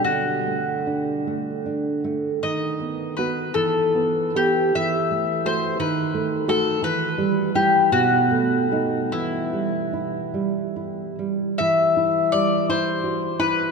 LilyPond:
<<
  \new Staff \with { instrumentName = "Mandolin" } { \time 6/8 \key d \mixolydian \tempo 4. = 52 fis'2~ fis'8 r8 | \key e \minor dis''4 b'8 a'4 g'8 | e''4 c''8 b'4 a'8 | b'4 g'8 fis'4. |
e'2~ e'8 r8 | e''4 d''8 c''4 b'8 | }
  \new Staff \with { instrumentName = "Nylon-string guitar" } { \time 6/8 \key d \mixolydian d8 a8 d'8 a8 d'8 a8 | \key e \minor dis8 b8 <b fis'>8 e8 b8 <b g'>8 | e8 a8 <a fis'>8 dis8 a8 <a fis'>8 | e8 g8 <g e'>8 b,8 a8 <a dis'>8 |
e8 g8 e'8 g8 e'8 g8 | e8 e'8 g8 e'8 fis'8 e'8 | }
>>